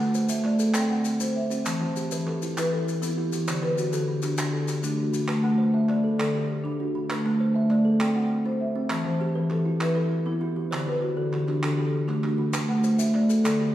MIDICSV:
0, 0, Header, 1, 4, 480
1, 0, Start_track
1, 0, Tempo, 302419
1, 2632, Time_signature, 12, 3, 24, 8
1, 21822, End_track
2, 0, Start_track
2, 0, Title_t, "Marimba"
2, 0, Program_c, 0, 12
2, 0, Note_on_c, 0, 57, 91
2, 0, Note_on_c, 0, 78, 70
2, 225, Note_off_c, 0, 57, 0
2, 461, Note_on_c, 0, 57, 84
2, 705, Note_off_c, 0, 78, 0
2, 712, Note_on_c, 0, 74, 66
2, 944, Note_off_c, 0, 57, 0
2, 1186, Note_on_c, 0, 60, 86
2, 1192, Note_on_c, 0, 79, 73
2, 1423, Note_on_c, 0, 78, 61
2, 1431, Note_off_c, 0, 74, 0
2, 1668, Note_off_c, 0, 60, 0
2, 1910, Note_on_c, 0, 72, 84
2, 1912, Note_off_c, 0, 79, 0
2, 2148, Note_off_c, 0, 78, 0
2, 2159, Note_on_c, 0, 76, 68
2, 2391, Note_off_c, 0, 72, 0
2, 2620, Note_on_c, 0, 52, 93
2, 2860, Note_on_c, 0, 72, 65
2, 2876, Note_off_c, 0, 76, 0
2, 3107, Note_off_c, 0, 52, 0
2, 3358, Note_on_c, 0, 52, 83
2, 3588, Note_off_c, 0, 72, 0
2, 3588, Note_on_c, 0, 69, 66
2, 3836, Note_off_c, 0, 52, 0
2, 4081, Note_on_c, 0, 52, 86
2, 4083, Note_on_c, 0, 71, 77
2, 4294, Note_off_c, 0, 69, 0
2, 4313, Note_on_c, 0, 69, 73
2, 4557, Note_off_c, 0, 52, 0
2, 4791, Note_on_c, 0, 64, 88
2, 4799, Note_off_c, 0, 71, 0
2, 5034, Note_off_c, 0, 69, 0
2, 5042, Note_on_c, 0, 67, 66
2, 5272, Note_off_c, 0, 64, 0
2, 5521, Note_on_c, 0, 50, 91
2, 5744, Note_on_c, 0, 71, 73
2, 5758, Note_off_c, 0, 67, 0
2, 5997, Note_off_c, 0, 50, 0
2, 6227, Note_on_c, 0, 50, 76
2, 6468, Note_off_c, 0, 71, 0
2, 6478, Note_on_c, 0, 67, 64
2, 6709, Note_off_c, 0, 50, 0
2, 6948, Note_on_c, 0, 50, 78
2, 7164, Note_off_c, 0, 67, 0
2, 7184, Note_on_c, 0, 67, 59
2, 7429, Note_off_c, 0, 50, 0
2, 7672, Note_on_c, 0, 62, 86
2, 7906, Note_off_c, 0, 67, 0
2, 7916, Note_on_c, 0, 66, 59
2, 8150, Note_off_c, 0, 62, 0
2, 8380, Note_on_c, 0, 57, 94
2, 8618, Note_on_c, 0, 78, 67
2, 8631, Note_off_c, 0, 66, 0
2, 8863, Note_off_c, 0, 57, 0
2, 9109, Note_on_c, 0, 57, 82
2, 9340, Note_off_c, 0, 78, 0
2, 9346, Note_on_c, 0, 74, 67
2, 9586, Note_off_c, 0, 57, 0
2, 9818, Note_on_c, 0, 50, 79
2, 9823, Note_on_c, 0, 69, 74
2, 10063, Note_off_c, 0, 74, 0
2, 10299, Note_off_c, 0, 50, 0
2, 10535, Note_on_c, 0, 62, 90
2, 10541, Note_off_c, 0, 69, 0
2, 10786, Note_on_c, 0, 66, 64
2, 11016, Note_off_c, 0, 62, 0
2, 11267, Note_on_c, 0, 57, 85
2, 11501, Note_off_c, 0, 66, 0
2, 11742, Note_off_c, 0, 57, 0
2, 11974, Note_on_c, 0, 57, 85
2, 12221, Note_on_c, 0, 74, 71
2, 12454, Note_off_c, 0, 57, 0
2, 12700, Note_on_c, 0, 60, 85
2, 12700, Note_on_c, 0, 79, 68
2, 12937, Note_off_c, 0, 74, 0
2, 12940, Note_on_c, 0, 78, 67
2, 13177, Note_off_c, 0, 60, 0
2, 13416, Note_off_c, 0, 79, 0
2, 13423, Note_on_c, 0, 72, 85
2, 13656, Note_off_c, 0, 78, 0
2, 13661, Note_on_c, 0, 76, 70
2, 13898, Note_off_c, 0, 72, 0
2, 14127, Note_on_c, 0, 52, 94
2, 14376, Note_off_c, 0, 76, 0
2, 14376, Note_on_c, 0, 72, 69
2, 14609, Note_off_c, 0, 52, 0
2, 14852, Note_on_c, 0, 52, 89
2, 15091, Note_on_c, 0, 69, 73
2, 15093, Note_off_c, 0, 72, 0
2, 15332, Note_off_c, 0, 52, 0
2, 15558, Note_on_c, 0, 52, 86
2, 15563, Note_on_c, 0, 71, 72
2, 15781, Note_off_c, 0, 69, 0
2, 15800, Note_on_c, 0, 69, 72
2, 16045, Note_off_c, 0, 52, 0
2, 16288, Note_off_c, 0, 71, 0
2, 16291, Note_on_c, 0, 64, 91
2, 16526, Note_off_c, 0, 69, 0
2, 16535, Note_on_c, 0, 67, 63
2, 16772, Note_off_c, 0, 64, 0
2, 17007, Note_on_c, 0, 50, 96
2, 17255, Note_off_c, 0, 67, 0
2, 17255, Note_on_c, 0, 71, 68
2, 17490, Note_off_c, 0, 50, 0
2, 17729, Note_on_c, 0, 50, 82
2, 17975, Note_off_c, 0, 71, 0
2, 17986, Note_on_c, 0, 67, 70
2, 18212, Note_off_c, 0, 50, 0
2, 18462, Note_on_c, 0, 50, 82
2, 18466, Note_on_c, 0, 69, 72
2, 18681, Note_off_c, 0, 67, 0
2, 18700, Note_on_c, 0, 67, 69
2, 18940, Note_off_c, 0, 50, 0
2, 19169, Note_on_c, 0, 62, 88
2, 19182, Note_off_c, 0, 69, 0
2, 19403, Note_on_c, 0, 66, 67
2, 19419, Note_off_c, 0, 67, 0
2, 19654, Note_off_c, 0, 62, 0
2, 19898, Note_on_c, 0, 57, 84
2, 20131, Note_off_c, 0, 66, 0
2, 20133, Note_on_c, 0, 78, 70
2, 20379, Note_off_c, 0, 57, 0
2, 20613, Note_on_c, 0, 57, 88
2, 20858, Note_off_c, 0, 78, 0
2, 20862, Note_on_c, 0, 74, 64
2, 21097, Note_off_c, 0, 57, 0
2, 21335, Note_on_c, 0, 50, 89
2, 21335, Note_on_c, 0, 69, 77
2, 21577, Note_on_c, 0, 67, 68
2, 21582, Note_off_c, 0, 74, 0
2, 21819, Note_off_c, 0, 50, 0
2, 21822, Note_off_c, 0, 67, 0
2, 21822, Note_off_c, 0, 69, 0
2, 21822, End_track
3, 0, Start_track
3, 0, Title_t, "Kalimba"
3, 0, Program_c, 1, 108
3, 0, Note_on_c, 1, 57, 90
3, 0, Note_on_c, 1, 71, 67
3, 228, Note_off_c, 1, 71, 0
3, 236, Note_on_c, 1, 72, 67
3, 465, Note_on_c, 1, 76, 64
3, 469, Note_off_c, 1, 57, 0
3, 707, Note_on_c, 1, 57, 84
3, 941, Note_on_c, 1, 69, 66
3, 952, Note_off_c, 1, 72, 0
3, 1162, Note_off_c, 1, 69, 0
3, 1181, Note_on_c, 1, 69, 77
3, 1187, Note_off_c, 1, 76, 0
3, 1188, Note_off_c, 1, 57, 0
3, 1422, Note_on_c, 1, 79, 66
3, 1424, Note_off_c, 1, 69, 0
3, 1913, Note_on_c, 1, 60, 81
3, 2147, Note_off_c, 1, 79, 0
3, 2151, Note_on_c, 1, 72, 66
3, 2367, Note_off_c, 1, 60, 0
3, 2387, Note_on_c, 1, 60, 81
3, 2633, Note_on_c, 1, 81, 68
3, 2870, Note_off_c, 1, 60, 0
3, 2872, Note_off_c, 1, 72, 0
3, 2872, Note_on_c, 1, 52, 95
3, 3113, Note_off_c, 1, 81, 0
3, 3122, Note_on_c, 1, 67, 64
3, 3353, Note_off_c, 1, 52, 0
3, 3370, Note_on_c, 1, 71, 67
3, 3597, Note_on_c, 1, 52, 88
3, 3838, Note_off_c, 1, 67, 0
3, 3849, Note_on_c, 1, 64, 67
3, 4068, Note_off_c, 1, 64, 0
3, 4076, Note_off_c, 1, 52, 0
3, 4082, Note_off_c, 1, 71, 0
3, 4087, Note_on_c, 1, 64, 77
3, 4326, Note_on_c, 1, 71, 64
3, 4561, Note_off_c, 1, 64, 0
3, 4804, Note_on_c, 1, 59, 81
3, 5040, Note_off_c, 1, 71, 0
3, 5042, Note_on_c, 1, 64, 69
3, 5279, Note_off_c, 1, 59, 0
3, 5282, Note_on_c, 1, 52, 81
3, 5517, Note_on_c, 1, 72, 65
3, 5756, Note_on_c, 1, 50, 93
3, 5758, Note_off_c, 1, 52, 0
3, 5758, Note_off_c, 1, 64, 0
3, 5995, Note_off_c, 1, 72, 0
3, 5998, Note_on_c, 1, 66, 65
3, 6234, Note_off_c, 1, 50, 0
3, 6237, Note_on_c, 1, 69, 68
3, 6473, Note_on_c, 1, 50, 85
3, 6715, Note_off_c, 1, 66, 0
3, 6716, Note_on_c, 1, 62, 67
3, 6936, Note_off_c, 1, 62, 0
3, 6952, Note_off_c, 1, 50, 0
3, 6954, Note_off_c, 1, 69, 0
3, 6955, Note_on_c, 1, 62, 69
3, 7189, Note_on_c, 1, 69, 66
3, 7432, Note_off_c, 1, 62, 0
3, 7667, Note_on_c, 1, 57, 76
3, 7902, Note_on_c, 1, 62, 65
3, 7909, Note_off_c, 1, 69, 0
3, 8137, Note_on_c, 1, 50, 80
3, 8148, Note_off_c, 1, 57, 0
3, 8385, Note_on_c, 1, 71, 68
3, 8621, Note_off_c, 1, 50, 0
3, 8623, Note_on_c, 1, 57, 92
3, 8624, Note_off_c, 1, 62, 0
3, 8857, Note_on_c, 1, 72, 69
3, 8865, Note_off_c, 1, 71, 0
3, 9104, Note_off_c, 1, 57, 0
3, 9110, Note_on_c, 1, 76, 62
3, 9346, Note_on_c, 1, 57, 84
3, 9580, Note_off_c, 1, 72, 0
3, 9585, Note_on_c, 1, 69, 69
3, 9808, Note_off_c, 1, 69, 0
3, 9824, Note_off_c, 1, 57, 0
3, 9826, Note_off_c, 1, 76, 0
3, 9827, Note_on_c, 1, 69, 84
3, 10065, Note_off_c, 1, 69, 0
3, 10081, Note_on_c, 1, 69, 72
3, 10557, Note_on_c, 1, 50, 80
3, 10789, Note_off_c, 1, 69, 0
3, 10795, Note_on_c, 1, 62, 68
3, 11015, Note_off_c, 1, 50, 0
3, 11034, Note_on_c, 1, 50, 80
3, 11276, Note_on_c, 1, 71, 67
3, 11505, Note_off_c, 1, 50, 0
3, 11506, Note_off_c, 1, 62, 0
3, 11519, Note_on_c, 1, 57, 94
3, 11746, Note_off_c, 1, 71, 0
3, 11750, Note_on_c, 1, 72, 72
3, 11987, Note_off_c, 1, 57, 0
3, 11993, Note_on_c, 1, 76, 65
3, 12222, Note_on_c, 1, 57, 83
3, 12458, Note_on_c, 1, 69, 69
3, 12462, Note_off_c, 1, 72, 0
3, 12678, Note_off_c, 1, 69, 0
3, 12697, Note_on_c, 1, 69, 78
3, 12698, Note_off_c, 1, 57, 0
3, 12703, Note_off_c, 1, 76, 0
3, 12936, Note_off_c, 1, 69, 0
3, 12941, Note_on_c, 1, 79, 73
3, 13421, Note_on_c, 1, 60, 83
3, 13656, Note_off_c, 1, 79, 0
3, 13877, Note_off_c, 1, 60, 0
3, 13896, Note_on_c, 1, 60, 89
3, 14131, Note_on_c, 1, 81, 67
3, 14365, Note_on_c, 1, 52, 98
3, 14374, Note_off_c, 1, 60, 0
3, 14612, Note_off_c, 1, 81, 0
3, 14616, Note_on_c, 1, 67, 75
3, 14845, Note_on_c, 1, 71, 71
3, 14848, Note_off_c, 1, 52, 0
3, 15078, Note_on_c, 1, 52, 87
3, 15323, Note_on_c, 1, 64, 70
3, 15334, Note_off_c, 1, 67, 0
3, 15536, Note_off_c, 1, 64, 0
3, 15555, Note_on_c, 1, 64, 74
3, 15565, Note_off_c, 1, 52, 0
3, 15568, Note_off_c, 1, 71, 0
3, 15797, Note_on_c, 1, 71, 71
3, 16044, Note_off_c, 1, 64, 0
3, 16281, Note_on_c, 1, 59, 83
3, 16522, Note_on_c, 1, 64, 73
3, 16525, Note_off_c, 1, 71, 0
3, 16765, Note_on_c, 1, 52, 79
3, 16767, Note_off_c, 1, 59, 0
3, 16998, Note_on_c, 1, 72, 69
3, 17243, Note_on_c, 1, 50, 89
3, 17248, Note_off_c, 1, 64, 0
3, 17249, Note_off_c, 1, 52, 0
3, 17486, Note_off_c, 1, 72, 0
3, 17491, Note_on_c, 1, 66, 67
3, 17727, Note_on_c, 1, 69, 62
3, 17729, Note_off_c, 1, 50, 0
3, 17972, Note_on_c, 1, 50, 85
3, 18213, Note_off_c, 1, 66, 0
3, 18215, Note_on_c, 1, 62, 72
3, 18440, Note_off_c, 1, 62, 0
3, 18452, Note_off_c, 1, 69, 0
3, 18454, Note_off_c, 1, 50, 0
3, 18459, Note_on_c, 1, 62, 75
3, 18696, Note_on_c, 1, 69, 70
3, 18938, Note_off_c, 1, 62, 0
3, 19173, Note_on_c, 1, 57, 83
3, 19414, Note_on_c, 1, 62, 75
3, 19418, Note_off_c, 1, 69, 0
3, 19652, Note_on_c, 1, 50, 84
3, 19656, Note_off_c, 1, 57, 0
3, 19891, Note_on_c, 1, 71, 66
3, 20136, Note_off_c, 1, 50, 0
3, 20136, Note_on_c, 1, 57, 89
3, 20137, Note_off_c, 1, 62, 0
3, 20375, Note_off_c, 1, 71, 0
3, 20378, Note_on_c, 1, 72, 67
3, 20614, Note_on_c, 1, 76, 67
3, 20618, Note_off_c, 1, 57, 0
3, 20858, Note_on_c, 1, 57, 86
3, 21098, Note_on_c, 1, 69, 68
3, 21100, Note_off_c, 1, 72, 0
3, 21318, Note_off_c, 1, 69, 0
3, 21337, Note_on_c, 1, 69, 81
3, 21339, Note_off_c, 1, 76, 0
3, 21340, Note_off_c, 1, 57, 0
3, 21571, Note_off_c, 1, 69, 0
3, 21590, Note_on_c, 1, 69, 68
3, 21822, Note_off_c, 1, 69, 0
3, 21822, End_track
4, 0, Start_track
4, 0, Title_t, "Drums"
4, 232, Note_on_c, 9, 70, 65
4, 391, Note_off_c, 9, 70, 0
4, 459, Note_on_c, 9, 70, 81
4, 618, Note_off_c, 9, 70, 0
4, 703, Note_on_c, 9, 39, 22
4, 861, Note_off_c, 9, 39, 0
4, 941, Note_on_c, 9, 70, 66
4, 1099, Note_off_c, 9, 70, 0
4, 1178, Note_on_c, 9, 39, 68
4, 1181, Note_on_c, 9, 70, 76
4, 1337, Note_off_c, 9, 39, 0
4, 1340, Note_off_c, 9, 70, 0
4, 1663, Note_on_c, 9, 70, 64
4, 1821, Note_off_c, 9, 70, 0
4, 1908, Note_on_c, 9, 70, 81
4, 2067, Note_off_c, 9, 70, 0
4, 2395, Note_on_c, 9, 70, 58
4, 2554, Note_off_c, 9, 70, 0
4, 2631, Note_on_c, 9, 70, 77
4, 2640, Note_on_c, 9, 39, 62
4, 2790, Note_off_c, 9, 70, 0
4, 2798, Note_off_c, 9, 39, 0
4, 3115, Note_on_c, 9, 70, 56
4, 3273, Note_off_c, 9, 70, 0
4, 3357, Note_on_c, 9, 70, 80
4, 3516, Note_off_c, 9, 70, 0
4, 3608, Note_on_c, 9, 39, 20
4, 3766, Note_off_c, 9, 39, 0
4, 3845, Note_on_c, 9, 70, 57
4, 4004, Note_off_c, 9, 70, 0
4, 4089, Note_on_c, 9, 70, 77
4, 4090, Note_on_c, 9, 39, 64
4, 4247, Note_off_c, 9, 70, 0
4, 4249, Note_off_c, 9, 39, 0
4, 4577, Note_on_c, 9, 70, 59
4, 4736, Note_off_c, 9, 70, 0
4, 4804, Note_on_c, 9, 70, 76
4, 4963, Note_off_c, 9, 70, 0
4, 5278, Note_on_c, 9, 70, 60
4, 5437, Note_off_c, 9, 70, 0
4, 5523, Note_on_c, 9, 70, 78
4, 5530, Note_on_c, 9, 39, 58
4, 5681, Note_off_c, 9, 70, 0
4, 5689, Note_off_c, 9, 39, 0
4, 5766, Note_on_c, 9, 39, 19
4, 5925, Note_off_c, 9, 39, 0
4, 5998, Note_on_c, 9, 70, 60
4, 6156, Note_off_c, 9, 70, 0
4, 6236, Note_on_c, 9, 70, 76
4, 6247, Note_on_c, 9, 39, 19
4, 6395, Note_off_c, 9, 70, 0
4, 6406, Note_off_c, 9, 39, 0
4, 6704, Note_on_c, 9, 70, 59
4, 6721, Note_on_c, 9, 39, 20
4, 6862, Note_off_c, 9, 70, 0
4, 6880, Note_off_c, 9, 39, 0
4, 6947, Note_on_c, 9, 70, 76
4, 6963, Note_on_c, 9, 39, 63
4, 7105, Note_off_c, 9, 70, 0
4, 7121, Note_off_c, 9, 39, 0
4, 7427, Note_on_c, 9, 70, 62
4, 7448, Note_on_c, 9, 39, 21
4, 7586, Note_off_c, 9, 70, 0
4, 7606, Note_off_c, 9, 39, 0
4, 7672, Note_on_c, 9, 70, 68
4, 7831, Note_off_c, 9, 70, 0
4, 8154, Note_on_c, 9, 70, 62
4, 8313, Note_off_c, 9, 70, 0
4, 8384, Note_on_c, 9, 39, 57
4, 8543, Note_off_c, 9, 39, 0
4, 9349, Note_on_c, 9, 39, 19
4, 9507, Note_off_c, 9, 39, 0
4, 9842, Note_on_c, 9, 39, 64
4, 10001, Note_off_c, 9, 39, 0
4, 11270, Note_on_c, 9, 39, 57
4, 11429, Note_off_c, 9, 39, 0
4, 12227, Note_on_c, 9, 39, 20
4, 12385, Note_off_c, 9, 39, 0
4, 12706, Note_on_c, 9, 39, 69
4, 12865, Note_off_c, 9, 39, 0
4, 14124, Note_on_c, 9, 39, 65
4, 14282, Note_off_c, 9, 39, 0
4, 15083, Note_on_c, 9, 39, 20
4, 15242, Note_off_c, 9, 39, 0
4, 15567, Note_on_c, 9, 39, 61
4, 15726, Note_off_c, 9, 39, 0
4, 17030, Note_on_c, 9, 39, 60
4, 17189, Note_off_c, 9, 39, 0
4, 17987, Note_on_c, 9, 39, 22
4, 18146, Note_off_c, 9, 39, 0
4, 18230, Note_on_c, 9, 39, 20
4, 18389, Note_off_c, 9, 39, 0
4, 18464, Note_on_c, 9, 39, 62
4, 18623, Note_off_c, 9, 39, 0
4, 19191, Note_on_c, 9, 39, 21
4, 19350, Note_off_c, 9, 39, 0
4, 19424, Note_on_c, 9, 39, 24
4, 19583, Note_off_c, 9, 39, 0
4, 19895, Note_on_c, 9, 70, 83
4, 19905, Note_on_c, 9, 39, 70
4, 20054, Note_off_c, 9, 70, 0
4, 20064, Note_off_c, 9, 39, 0
4, 20375, Note_on_c, 9, 70, 63
4, 20534, Note_off_c, 9, 70, 0
4, 20623, Note_on_c, 9, 70, 78
4, 20782, Note_off_c, 9, 70, 0
4, 20864, Note_on_c, 9, 39, 22
4, 21022, Note_off_c, 9, 39, 0
4, 21109, Note_on_c, 9, 70, 64
4, 21267, Note_off_c, 9, 70, 0
4, 21349, Note_on_c, 9, 70, 78
4, 21361, Note_on_c, 9, 39, 67
4, 21508, Note_off_c, 9, 70, 0
4, 21520, Note_off_c, 9, 39, 0
4, 21822, End_track
0, 0, End_of_file